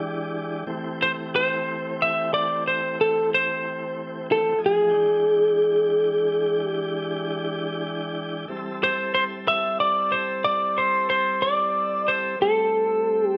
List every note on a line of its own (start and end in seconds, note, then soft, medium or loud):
0.00 0.64 E3 medium
0.00 0.64 G#3 medium
0.00 0.64 D4 medium
0.00 0.64 G4 medium
0.67 4.54 E3 medium
0.67 4.55 A3 medium
0.67 4.54 C4 medium
0.67 4.54 G4 medium
1.02 1.11 C5 medium
1.36 2.02 C5 medium
2.02 2.33 E5 medium
2.34 2.63 D5 medium
2.68 2.99 C5 medium
3.01 3.29 A4 medium
3.34 4.25 C5 medium
4.32 4.60 A4 medium
4.58 4.91 F3 medium
4.58 4.91 A3 medium
4.58 4.91 D#4 medium
4.58 4.91 G#4 medium
4.66 6.64 G#4 medium
4.90 8.46 E3 medium
4.90 8.46 G#3 medium
4.90 8.46 D4 medium
4.90 8.45 G5 medium
6.64 7.84 G4 medium
8.48 12.36 G3 medium
8.48 12.36 C4 medium
8.48 12.36 E4 medium
8.48 12.36 A4 medium
8.84 9.13 C5 medium
9.15 9.23 C5 medium
9.48 9.80 E5 medium
9.80 10.13 D5 medium
10.12 10.46 C5 medium
10.44 10.78 D5 medium
10.78 11.09 C5 medium
11.10 11.40 C5 medium
11.42 12.09 D5 medium
12.08 12.38 C5 medium
12.40 13.37 G3 medium
12.40 13.37 A3 medium
12.40 13.37 C4 medium
12.40 13.37 E4 medium
12.40 13.27 A4 medium
13.27 13.37 G4 medium